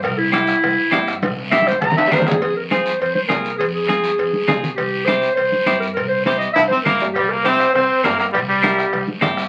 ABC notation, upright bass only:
X:1
M:4/4
L:1/8
Q:1/4=202
K:Fm
V:1 name="Upright bass" clef=bass
C,,4 C,, z G,,2 | C,,4 C,, z G,,2 | F,,4 F,, z C,,2 | F,,4 F,, z C,,2 |
C,,4 C,, z G,,2 | C,,4 C,, z G,,2 | C,,4 C,, z G,,2 | C,,4 C,, z G,,2 |]